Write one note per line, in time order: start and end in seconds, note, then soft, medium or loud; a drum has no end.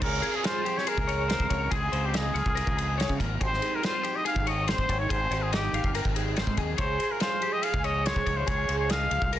0.01 0.20 C#2 loud
0.01 0.65 C#3 medium
0.01 1.30 C4 medium
0.01 0.44 F4 medium
0.01 0.23 G#4 medium
0.01 0.37 A#4 medium
0.01 0.23 C#5 medium
0.01 kick loud
0.01 crash loud
0.22 0.44 G#4 medium
0.22 0.87 G#4 medium
0.22 ride medium
0.36 0.47 G#4 medium
0.44 0.65 F4 medium
0.44 1.49 F4 medium
0.44 0.79 C5 medium
0.44 snare loud
0.44 ride medium
0.65 1.68 F3 medium
0.65 0.86 G4 medium
0.65 ride medium
0.78 0.90 C#5 medium
0.78 snare soft
0.87 1.08 G#4 medium
0.87 3.23 G#4 medium
0.87 1.72 A#4 medium
0.87 ride medium
0.98 1.35 C#2 medium
0.98 kick medium
1.07 1.28 C#5 medium
1.07 ride medium
1.28 1.69 G#2 medium
1.28 1.72 C4 medium
1.28 1.49 C5 medium
1.28 snare medium
1.28 ride medium
1.40 1.49 C#2 medium
1.40 kick medium
1.50 1.69 C#2 medium
1.50 1.69 F4 medium
1.50 1.71 C#5 medium
1.50 kick medium
1.50 ride medium
1.71 1.90 C#2 medium
1.71 2.35 C#3 medium
1.71 3.42 C4 medium
1.71 1.92 F4 medium
1.71 1.92 G#4 medium
1.71 2.07 G#4 medium
1.71 kick loud
1.71 ride loud
1.92 2.30 C#2 medium
1.92 2.14 F4 medium
1.92 2.14 C5 medium
1.92 ride medium
2.05 2.15 G4 medium
2.14 2.56 F4 medium
2.14 3.17 G#4 medium
2.14 2.34 D#5 medium
2.14 snare loud
2.14 ride medium
2.34 2.44 C#2 medium
2.34 3.38 F3 medium
2.34 2.55 F5 medium
2.34 ride medium
2.46 2.64 C2 medium
2.46 kick medium
2.55 3.39 F4 medium
2.55 2.77 A#4 medium
2.55 ride medium
2.67 3.04 C#2 medium
2.67 kick medium
2.77 2.97 G#4 medium
2.77 ride medium
2.98 3.19 C3 medium
2.98 3.19 C#5 medium
2.98 snare medium
2.98 ride medium
3.09 3.18 C#3 medium
3.09 kick medium
3.19 3.38 G#1 medium
3.19 3.41 A#2 medium
3.19 3.41 A#4 medium
3.19 kick medium
3.19 ride medium
3.41 3.59 G#1 medium
3.41 4.68 G#2 medium
3.41 4.69 C4 medium
3.41 3.85 D#4 medium
3.41 3.63 G4 medium
3.41 3.61 C5 medium
3.41 3.77 C5 loud
3.41 kick loud
3.41 ride medium
3.53 snare soft
3.61 4.27 G4 medium
3.61 3.82 G#4 medium
3.61 ride medium
3.75 3.87 A#4 medium
3.82 4.89 D#4 medium
3.82 4.03 F4 medium
3.82 4.17 C5 loud
3.82 snare loud
3.82 ride medium
4.03 5.72 D#3 medium
4.03 4.25 G4 medium
4.03 ride medium
4.16 4.26 D#5 medium
4.25 5.08 G4 medium
4.25 4.46 G#4 medium
4.25 4.46 F5 loud
4.25 ride medium
4.36 4.73 G#1 medium
4.36 kick medium
4.46 4.67 C#5 medium
4.46 4.71 D#5 medium
4.46 ride medium
4.68 5.10 D#2 medium
4.68 4.89 C4 medium
4.68 4.89 C5 medium
4.68 4.99 C5 loud
4.68 snare loud
4.68 ride medium
4.78 4.87 G#1 loud
4.78 kick medium
4.89 5.07 G#1 loud
4.89 5.01 C4 medium
4.89 5.10 C#5 medium
4.89 kick medium
4.89 ride medium
5.00 5.11 D#4 medium
5.00 5.12 C#5 medium
5.09 6.38 G#2 medium
5.09 6.36 C4 medium
5.09 5.31 G#4 medium
5.09 5.44 C5 loud
5.09 kick loud
5.09 ride loud
5.14 5.52 D#4 medium
5.14 5.32 G4 medium
5.30 5.68 G#1 medium
5.30 5.94 G4 medium
5.30 5.52 C5 medium
5.30 ride medium
5.42 5.52 G#4 medium
5.52 6.56 D#4 medium
5.52 5.92 G4 medium
5.52 5.73 D#5 medium
5.52 snare loud
5.52 ride loud
5.73 5.82 G#1 medium
5.73 6.79 D#3 medium
5.73 5.95 F5 medium
5.73 ride medium
5.84 6.03 G1 medium
5.84 kick medium
5.95 6.77 G4 medium
5.95 6.16 A#4 medium
5.95 ride loud
6.05 6.42 G#1 medium
6.05 kick medium
6.16 6.37 G#4 medium
6.16 ride medium
6.36 6.79 D#2 medium
6.36 6.79 C4 medium
6.36 6.57 C5 medium
6.36 snare loud
6.36 ride medium
6.47 6.56 G#2 medium
6.47 kick medium
6.57 6.76 D#2 medium
6.57 6.76 D#4 medium
6.57 6.79 G#4 medium
6.57 kick medium
6.57 ride medium
6.78 6.97 C#2 medium
6.78 7.42 C#3 medium
6.78 8.05 G#3 medium
6.78 7.20 F4 medium
6.78 6.99 G#4 medium
6.78 7.13 C5 loud
6.78 7.00 C#5 medium
6.78 kick loud
6.78 ride medium
6.99 7.20 G#4 medium
6.99 7.63 G#4 medium
6.99 ride medium
7.11 7.23 A#4 medium
7.20 7.42 F4 medium
7.20 8.27 F4 medium
7.20 7.54 C5 medium
7.20 snare loud
7.20 ride medium
7.40 8.45 F3 medium
7.40 7.64 G4 medium
7.40 ride medium
7.53 7.64 D#5 loud
7.63 8.45 G#4 medium
7.63 7.85 G#4 medium
7.63 7.86 F5 medium
7.63 ride medium
7.74 8.11 C#2 medium
7.74 kick medium
7.84 8.06 C#5 medium
7.84 8.07 D#5 loud
7.84 ride medium
8.05 8.45 G#2 medium
8.05 8.48 G#3 medium
8.05 8.26 C5 medium
8.05 8.38 C#5 loud
8.05 snare medium
8.05 ride medium
8.16 8.25 C#2 medium
8.16 kick medium
8.26 8.45 C#2 medium
8.26 8.46 F4 medium
8.26 8.48 C#5 medium
8.26 kick medium
8.26 ride medium
8.37 8.49 C5 medium
8.47 8.66 C#2 medium
8.47 9.12 C#3 medium
8.47 9.39 G#3 medium
8.47 8.91 F4 medium
8.47 8.69 G#4 medium
8.47 8.79 C#5 loud
8.47 kick loud
8.47 ride medium
8.51 8.70 G#4 medium
8.69 9.06 C#2 loud
8.69 9.33 G#4 medium
8.69 8.90 C5 medium
8.69 ride medium
8.79 8.92 C#5 medium
8.90 9.39 F4 medium
8.90 9.11 D#5 medium
8.90 9.33 F5 loud
8.90 snare loud
8.90 ride medium
9.11 9.21 C#2 medium
9.11 9.39 F3 medium
9.11 9.32 F5 medium
9.11 ride medium
9.22 9.39 C2 medium
9.22 kick medium
9.33 9.39 G#4 medium
9.33 9.39 A#4 medium
9.33 ride loud